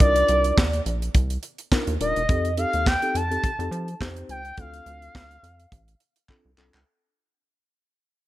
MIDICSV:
0, 0, Header, 1, 5, 480
1, 0, Start_track
1, 0, Tempo, 571429
1, 4, Time_signature, 4, 2, 24, 8
1, 6950, End_track
2, 0, Start_track
2, 0, Title_t, "Analog synth lead"
2, 0, Program_c, 0, 81
2, 5, Note_on_c, 0, 74, 100
2, 691, Note_off_c, 0, 74, 0
2, 1690, Note_on_c, 0, 75, 93
2, 2134, Note_off_c, 0, 75, 0
2, 2170, Note_on_c, 0, 77, 97
2, 2409, Note_on_c, 0, 79, 108
2, 2422, Note_off_c, 0, 77, 0
2, 2655, Note_on_c, 0, 81, 119
2, 2667, Note_off_c, 0, 79, 0
2, 3369, Note_off_c, 0, 81, 0
2, 3613, Note_on_c, 0, 79, 102
2, 3832, Note_off_c, 0, 79, 0
2, 3860, Note_on_c, 0, 77, 127
2, 5258, Note_off_c, 0, 77, 0
2, 6950, End_track
3, 0, Start_track
3, 0, Title_t, "Tine electric piano"
3, 0, Program_c, 1, 4
3, 0, Note_on_c, 1, 62, 88
3, 0, Note_on_c, 1, 63, 70
3, 0, Note_on_c, 1, 65, 75
3, 0, Note_on_c, 1, 70, 93
3, 536, Note_off_c, 1, 62, 0
3, 537, Note_off_c, 1, 63, 0
3, 538, Note_off_c, 1, 65, 0
3, 539, Note_off_c, 1, 70, 0
3, 1443, Note_on_c, 1, 62, 87
3, 1446, Note_on_c, 1, 63, 86
3, 1450, Note_on_c, 1, 65, 80
3, 1450, Note_on_c, 1, 70, 96
3, 1615, Note_off_c, 1, 62, 0
3, 1616, Note_off_c, 1, 63, 0
3, 1618, Note_off_c, 1, 65, 0
3, 1618, Note_off_c, 1, 70, 0
3, 1685, Note_on_c, 1, 62, 83
3, 1687, Note_on_c, 1, 63, 74
3, 1689, Note_on_c, 1, 65, 73
3, 1691, Note_on_c, 1, 70, 91
3, 1856, Note_off_c, 1, 62, 0
3, 1857, Note_off_c, 1, 63, 0
3, 1858, Note_off_c, 1, 65, 0
3, 1859, Note_off_c, 1, 70, 0
3, 1926, Note_on_c, 1, 60, 74
3, 1928, Note_on_c, 1, 63, 66
3, 1930, Note_on_c, 1, 67, 67
3, 1930, Note_on_c, 1, 69, 83
3, 2096, Note_off_c, 1, 60, 0
3, 2097, Note_off_c, 1, 63, 0
3, 2098, Note_off_c, 1, 67, 0
3, 2098, Note_off_c, 1, 69, 0
3, 2161, Note_on_c, 1, 60, 71
3, 2164, Note_on_c, 1, 63, 74
3, 2166, Note_on_c, 1, 67, 73
3, 2168, Note_on_c, 1, 69, 81
3, 2405, Note_off_c, 1, 60, 0
3, 2407, Note_off_c, 1, 63, 0
3, 2408, Note_off_c, 1, 67, 0
3, 2409, Note_off_c, 1, 69, 0
3, 2539, Note_on_c, 1, 60, 85
3, 2540, Note_on_c, 1, 63, 80
3, 2542, Note_on_c, 1, 67, 74
3, 2545, Note_on_c, 1, 69, 88
3, 2691, Note_off_c, 1, 60, 0
3, 2692, Note_off_c, 1, 63, 0
3, 2692, Note_off_c, 1, 67, 0
3, 2694, Note_off_c, 1, 69, 0
3, 2778, Note_on_c, 1, 60, 89
3, 2781, Note_on_c, 1, 63, 70
3, 2784, Note_on_c, 1, 67, 75
3, 2785, Note_on_c, 1, 69, 94
3, 2930, Note_off_c, 1, 60, 0
3, 2932, Note_off_c, 1, 63, 0
3, 2934, Note_off_c, 1, 67, 0
3, 2934, Note_off_c, 1, 69, 0
3, 3017, Note_on_c, 1, 60, 78
3, 3020, Note_on_c, 1, 63, 74
3, 3022, Note_on_c, 1, 67, 73
3, 3023, Note_on_c, 1, 69, 91
3, 3260, Note_off_c, 1, 60, 0
3, 3261, Note_off_c, 1, 63, 0
3, 3262, Note_off_c, 1, 67, 0
3, 3263, Note_off_c, 1, 69, 0
3, 3364, Note_on_c, 1, 60, 101
3, 3366, Note_on_c, 1, 63, 93
3, 3369, Note_on_c, 1, 67, 88
3, 3371, Note_on_c, 1, 72, 97
3, 3697, Note_off_c, 1, 60, 0
3, 3698, Note_off_c, 1, 63, 0
3, 3700, Note_off_c, 1, 67, 0
3, 3701, Note_off_c, 1, 72, 0
3, 3841, Note_on_c, 1, 60, 84
3, 3844, Note_on_c, 1, 62, 71
3, 3847, Note_on_c, 1, 65, 76
3, 3849, Note_on_c, 1, 69, 82
3, 4497, Note_off_c, 1, 60, 0
3, 4499, Note_off_c, 1, 62, 0
3, 4500, Note_off_c, 1, 65, 0
3, 4501, Note_off_c, 1, 69, 0
3, 5285, Note_on_c, 1, 60, 88
3, 5289, Note_on_c, 1, 62, 74
3, 5290, Note_on_c, 1, 65, 78
3, 5292, Note_on_c, 1, 69, 90
3, 5456, Note_off_c, 1, 60, 0
3, 5457, Note_off_c, 1, 62, 0
3, 5458, Note_off_c, 1, 65, 0
3, 5459, Note_off_c, 1, 69, 0
3, 5520, Note_on_c, 1, 60, 84
3, 5522, Note_on_c, 1, 62, 84
3, 5525, Note_on_c, 1, 65, 73
3, 5527, Note_on_c, 1, 69, 104
3, 5693, Note_off_c, 1, 60, 0
3, 5694, Note_off_c, 1, 62, 0
3, 5696, Note_off_c, 1, 65, 0
3, 5696, Note_off_c, 1, 69, 0
3, 6950, End_track
4, 0, Start_track
4, 0, Title_t, "Analog synth bass"
4, 0, Program_c, 2, 38
4, 1, Note_on_c, 2, 36, 101
4, 197, Note_off_c, 2, 36, 0
4, 241, Note_on_c, 2, 36, 101
4, 437, Note_off_c, 2, 36, 0
4, 482, Note_on_c, 2, 39, 94
4, 678, Note_off_c, 2, 39, 0
4, 720, Note_on_c, 2, 34, 95
4, 916, Note_off_c, 2, 34, 0
4, 963, Note_on_c, 2, 36, 96
4, 1158, Note_off_c, 2, 36, 0
4, 1573, Note_on_c, 2, 39, 95
4, 1661, Note_off_c, 2, 39, 0
4, 1680, Note_on_c, 2, 27, 93
4, 1791, Note_off_c, 2, 27, 0
4, 1817, Note_on_c, 2, 28, 97
4, 1904, Note_off_c, 2, 28, 0
4, 1926, Note_on_c, 2, 41, 95
4, 2229, Note_off_c, 2, 41, 0
4, 2299, Note_on_c, 2, 39, 87
4, 2494, Note_off_c, 2, 39, 0
4, 2643, Note_on_c, 2, 41, 82
4, 2839, Note_off_c, 2, 41, 0
4, 3014, Note_on_c, 2, 41, 117
4, 3102, Note_off_c, 2, 41, 0
4, 3119, Note_on_c, 2, 53, 109
4, 3316, Note_off_c, 2, 53, 0
4, 3365, Note_on_c, 2, 41, 96
4, 3559, Note_off_c, 2, 41, 0
4, 3602, Note_on_c, 2, 37, 88
4, 3798, Note_off_c, 2, 37, 0
4, 3843, Note_on_c, 2, 38, 110
4, 4038, Note_off_c, 2, 38, 0
4, 4081, Note_on_c, 2, 38, 102
4, 4278, Note_off_c, 2, 38, 0
4, 4326, Note_on_c, 2, 38, 90
4, 4520, Note_off_c, 2, 38, 0
4, 4561, Note_on_c, 2, 41, 88
4, 4757, Note_off_c, 2, 41, 0
4, 4804, Note_on_c, 2, 33, 102
4, 4999, Note_off_c, 2, 33, 0
4, 5419, Note_on_c, 2, 36, 85
4, 5505, Note_off_c, 2, 36, 0
4, 5523, Note_on_c, 2, 36, 90
4, 5633, Note_off_c, 2, 36, 0
4, 5661, Note_on_c, 2, 37, 100
4, 5746, Note_off_c, 2, 37, 0
4, 6950, End_track
5, 0, Start_track
5, 0, Title_t, "Drums"
5, 0, Note_on_c, 9, 42, 87
5, 2, Note_on_c, 9, 36, 107
5, 83, Note_off_c, 9, 42, 0
5, 86, Note_off_c, 9, 36, 0
5, 131, Note_on_c, 9, 42, 58
5, 215, Note_off_c, 9, 42, 0
5, 239, Note_on_c, 9, 42, 73
5, 323, Note_off_c, 9, 42, 0
5, 372, Note_on_c, 9, 42, 57
5, 456, Note_off_c, 9, 42, 0
5, 483, Note_on_c, 9, 36, 125
5, 487, Note_on_c, 9, 38, 127
5, 491, Note_on_c, 9, 39, 114
5, 567, Note_off_c, 9, 36, 0
5, 571, Note_off_c, 9, 38, 0
5, 575, Note_off_c, 9, 39, 0
5, 616, Note_on_c, 9, 42, 51
5, 700, Note_off_c, 9, 42, 0
5, 723, Note_on_c, 9, 42, 82
5, 807, Note_off_c, 9, 42, 0
5, 858, Note_on_c, 9, 42, 55
5, 942, Note_off_c, 9, 42, 0
5, 961, Note_on_c, 9, 42, 92
5, 963, Note_on_c, 9, 36, 104
5, 1045, Note_off_c, 9, 42, 0
5, 1047, Note_off_c, 9, 36, 0
5, 1093, Note_on_c, 9, 42, 60
5, 1177, Note_off_c, 9, 42, 0
5, 1198, Note_on_c, 9, 42, 67
5, 1282, Note_off_c, 9, 42, 0
5, 1331, Note_on_c, 9, 42, 59
5, 1415, Note_off_c, 9, 42, 0
5, 1442, Note_on_c, 9, 36, 107
5, 1447, Note_on_c, 9, 38, 109
5, 1451, Note_on_c, 9, 39, 91
5, 1526, Note_off_c, 9, 36, 0
5, 1531, Note_off_c, 9, 38, 0
5, 1535, Note_off_c, 9, 39, 0
5, 1573, Note_on_c, 9, 42, 63
5, 1657, Note_off_c, 9, 42, 0
5, 1686, Note_on_c, 9, 42, 86
5, 1770, Note_off_c, 9, 42, 0
5, 1817, Note_on_c, 9, 42, 51
5, 1901, Note_off_c, 9, 42, 0
5, 1923, Note_on_c, 9, 42, 81
5, 1925, Note_on_c, 9, 36, 120
5, 2007, Note_off_c, 9, 42, 0
5, 2009, Note_off_c, 9, 36, 0
5, 2057, Note_on_c, 9, 42, 54
5, 2141, Note_off_c, 9, 42, 0
5, 2163, Note_on_c, 9, 42, 78
5, 2247, Note_off_c, 9, 42, 0
5, 2297, Note_on_c, 9, 42, 51
5, 2381, Note_off_c, 9, 42, 0
5, 2406, Note_on_c, 9, 36, 127
5, 2412, Note_on_c, 9, 38, 127
5, 2417, Note_on_c, 9, 39, 99
5, 2490, Note_off_c, 9, 36, 0
5, 2496, Note_off_c, 9, 38, 0
5, 2501, Note_off_c, 9, 39, 0
5, 2539, Note_on_c, 9, 42, 52
5, 2623, Note_off_c, 9, 42, 0
5, 2649, Note_on_c, 9, 42, 91
5, 2733, Note_off_c, 9, 42, 0
5, 2785, Note_on_c, 9, 42, 51
5, 2869, Note_off_c, 9, 42, 0
5, 2887, Note_on_c, 9, 36, 113
5, 2890, Note_on_c, 9, 42, 85
5, 2971, Note_off_c, 9, 36, 0
5, 2974, Note_off_c, 9, 42, 0
5, 3023, Note_on_c, 9, 42, 56
5, 3107, Note_off_c, 9, 42, 0
5, 3128, Note_on_c, 9, 42, 62
5, 3212, Note_off_c, 9, 42, 0
5, 3259, Note_on_c, 9, 42, 51
5, 3343, Note_off_c, 9, 42, 0
5, 3366, Note_on_c, 9, 36, 86
5, 3375, Note_on_c, 9, 38, 107
5, 3379, Note_on_c, 9, 39, 101
5, 3450, Note_off_c, 9, 36, 0
5, 3459, Note_off_c, 9, 38, 0
5, 3463, Note_off_c, 9, 39, 0
5, 3498, Note_on_c, 9, 42, 56
5, 3582, Note_off_c, 9, 42, 0
5, 3607, Note_on_c, 9, 42, 88
5, 3691, Note_off_c, 9, 42, 0
5, 3736, Note_on_c, 9, 42, 49
5, 3820, Note_off_c, 9, 42, 0
5, 3842, Note_on_c, 9, 42, 79
5, 3845, Note_on_c, 9, 36, 103
5, 3926, Note_off_c, 9, 42, 0
5, 3929, Note_off_c, 9, 36, 0
5, 3978, Note_on_c, 9, 42, 53
5, 4062, Note_off_c, 9, 42, 0
5, 4085, Note_on_c, 9, 42, 69
5, 4169, Note_off_c, 9, 42, 0
5, 4218, Note_on_c, 9, 42, 54
5, 4302, Note_off_c, 9, 42, 0
5, 4325, Note_on_c, 9, 36, 119
5, 4331, Note_on_c, 9, 38, 117
5, 4335, Note_on_c, 9, 39, 104
5, 4409, Note_off_c, 9, 36, 0
5, 4415, Note_off_c, 9, 38, 0
5, 4419, Note_off_c, 9, 39, 0
5, 4460, Note_on_c, 9, 42, 50
5, 4544, Note_off_c, 9, 42, 0
5, 4568, Note_on_c, 9, 42, 92
5, 4652, Note_off_c, 9, 42, 0
5, 4701, Note_on_c, 9, 42, 53
5, 4785, Note_off_c, 9, 42, 0
5, 4805, Note_on_c, 9, 36, 101
5, 4807, Note_on_c, 9, 42, 88
5, 4889, Note_off_c, 9, 36, 0
5, 4891, Note_off_c, 9, 42, 0
5, 4939, Note_on_c, 9, 42, 54
5, 5023, Note_off_c, 9, 42, 0
5, 5042, Note_on_c, 9, 42, 65
5, 5126, Note_off_c, 9, 42, 0
5, 5174, Note_on_c, 9, 42, 58
5, 5258, Note_off_c, 9, 42, 0
5, 5281, Note_on_c, 9, 36, 93
5, 5285, Note_on_c, 9, 39, 62
5, 5365, Note_off_c, 9, 36, 0
5, 5369, Note_off_c, 9, 39, 0
5, 5528, Note_on_c, 9, 39, 95
5, 5612, Note_off_c, 9, 39, 0
5, 5661, Note_on_c, 9, 39, 83
5, 5745, Note_off_c, 9, 39, 0
5, 6950, End_track
0, 0, End_of_file